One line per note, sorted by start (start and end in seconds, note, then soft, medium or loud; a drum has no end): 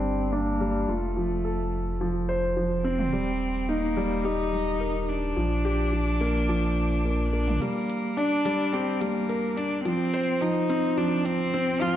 0.00 0.86 G1 medium
0.00 0.61 G3 medium
0.00 0.34 C4 medium
0.00 0.33 D4 medium
0.00 0.90 D5 medium
0.33 0.90 A#3 medium
0.33 0.59 D4 medium
0.61 0.76 G3 medium
0.88 3.10 F1 medium
0.88 2.01 A3 medium
0.88 1.15 F4 medium
1.17 1.43 F3 medium
1.44 1.71 A4 medium
2.01 2.27 F3 medium
2.29 2.55 C5 medium
2.57 2.83 F3 medium
2.84 3.70 C4 medium
2.84 3.11 C4 medium
2.99 mid tom medium
3.13 5.34 D#1 medium
3.13 3.29 G3 medium
3.69 4.26 A#3 medium
3.69 3.95 D#4 medium
3.97 4.13 G3 medium
4.25 5.10 D#4 loud
4.25 4.51 G4 medium
4.53 4.79 G3 medium
4.80 5.07 A#4 medium
5.09 7.32 D4 medium
5.37 7.58 A#1 medium
5.37 5.63 F3 medium
5.65 5.92 G4 medium
5.93 6.20 F3 medium
6.21 6.48 A#3 medium
6.49 6.65 F3 medium
7.05 7.31 A#3 medium
7.33 7.60 A#3 medium
7.33 7.62 D4 medium
7.47 mid tom medium
7.61 7.77 G3 medium
7.61 8.18 A#3 medium
7.61 closed hi-hat soft
7.89 8.10 G1 medium
7.89 closed hi-hat soft
8.17 8.74 D4 medium
8.17 8.44 D4 medium
8.17 closed hi-hat soft
8.45 8.66 G1 medium
8.45 8.61 G3 medium
8.45 closed hi-hat medium
8.73 9.02 C4 medium
8.73 9.00 G4 medium
8.73 closed hi-hat soft
9.01 9.28 G3 medium
9.01 9.59 A#3 medium
9.01 closed hi-hat medium
9.29 9.56 A#4 medium
9.29 closed hi-hat soft
9.57 9.79 G1 medium
9.57 9.84 D4 medium
9.57 closed hi-hat medium
9.71 closed hi-hat soft
9.85 10.12 F3 medium
9.85 10.43 C4 loud
9.85 closed hi-hat soft
10.14 10.40 C5 medium
10.14 closed hi-hat medium
10.41 10.68 F3 medium
10.41 10.99 D#4 medium
10.41 closed hi-hat soft
10.70 10.96 C4 medium
10.70 closed hi-hat medium
10.97 11.14 F3 medium
10.97 11.27 D4 medium
10.97 closed hi-hat soft
11.25 11.83 C4 loud
11.25 closed hi-hat medium
11.54 11.80 C4 medium
11.54 closed hi-hat soft
11.81 11.96 F3 medium
11.81 11.96 F4 medium
11.81 closed hi-hat medium